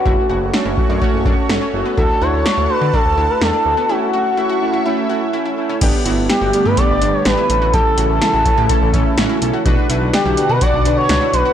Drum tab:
CC |--------|--------|--------|x-------|
HH |--------|--------|--------|xxxxxxxx|
SD |--o---o-|--o---o-|--------|--o---o-|
BD |o--ooo--|o---o---|--------|o---o---|

CC |--------|--------|
HH |xxxxxxxx|xxxxxxxx|
SD |--o---o-|--o---o-|
BD |o--ooo--|o---o---|